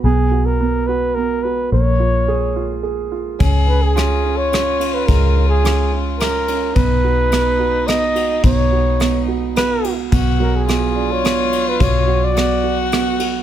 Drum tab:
RD |------|------|x-x-xx|x-x-xx|
SD |------|------|--r-r-|--r-r-|
BD |------|------|o-----|o-----|

RD |x-x-xx|x-x-xx|x-x-xx|x-x-xx|
SD |--r-r-|--r-r-|--r-r-|--r-r-|
BD |o-----|o-----|o-----|o-----|